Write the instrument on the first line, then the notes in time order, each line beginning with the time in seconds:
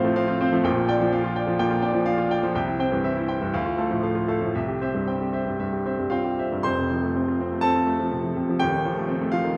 grand piano
Already playing: A1 A2 F3 A3 C4 F4 C5 F5
0.04 F3 A3
0.16 C4 F5
0.28 F4
0.41 C4 C5 F5
0.52 F3 A3
0.64 A#1 A#2 G5
0.77 F4
0.88 D4 D5 G5
1.00 F3
1.12 D4 F5
1.24 F4
1.36 D5 G5
1.47 F3
1.59 A#2 G5
1.71 F4
1.82 D4 D5 G5
1.93 F3
2.06 D4 F5
2.18 F4
2.31 D5 G5
2.43 F3
2.55 C2 G5
2.68 E4
2.79 C4 C5 G5
2.92 G2 E3
3.04 C4 E5
3.17 E4
3.28 C5 G5
3.41 G2 E3
3.54 D2 F5
3.66 F4
3.78 A3 A4 F5
3.91 A2 F3
4.03 A3 F5
4.15 F4
4.28 A3 A4 F5
4.41 A2 F3
4.55 C2 E5
4.68 G4
4.81 C4 C5 E5
4.94 G2 G3
5.07 C4 G5
5.21 G4
5.33 C5 E5
5.46 G2 G3
5.60 G2 E5
5.73 G4
5.85 C4 C5 E5
5.99 G2 G3
6.10 C4 F4 F5 G5
6.25 G4
6.39 C5 E5
6.52 G2 G3
6.63 F1 F2 C5 C6
6.79 C3
6.91 F3
7.03 A3
7.16 C4
7.28 F4
7.41 C4
7.52 A3
7.61 C4 A4 A5
7.75 F4
7.87 A3
8.00 F3
8.11 C3
8.24 F3
8.36 C3
8.49 F3
8.60 D#1 D#2 G4 G5
8.74 D#3
8.85 F3
8.96 A3
9.08 C4
9.21 A3
9.32 F3 F4 F5
9.45 D#3